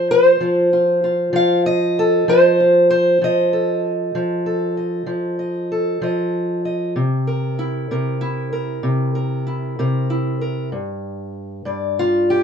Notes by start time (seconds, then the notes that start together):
Already playing: F3
0.11 C5
0.41 F3 F4
0.73 F4
1.04 F4
1.33 F3 F5
1.66 D#5
1.99 A4
2.28 F3 C5
2.60 F4
2.91 C5
3.22 F3 D#5
3.53 A4
4.15 F3
4.46 A4
4.77 D#5
5.07 F3
5.39 D#5
5.72 A4
6.02 F3 D#5
6.65 D#5
6.96 C3
7.27 A#4
7.59 E4
7.91 C3 A#4
8.21 E4
8.53 A#4
8.83 C3
9.15 A#4
9.47 E4
9.79 C3 A#4
10.10 E4
10.41 A#4
10.72 G2
11.65 G2 D5
11.99 F4
12.30 G4